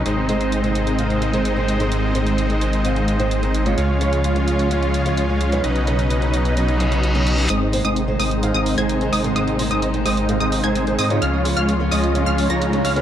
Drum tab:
HH |x-xxxxxxxxxxx-xx|x-xxxxxxxxxxxxxx|x-xxxxxxxxxxx-xx|xxxxxxxxxxxxxxxx|

HH |x-oxx-oxx-oxxxox|xxoxxxoxxxoxxxox|x-oxx-oxx-oxxxox|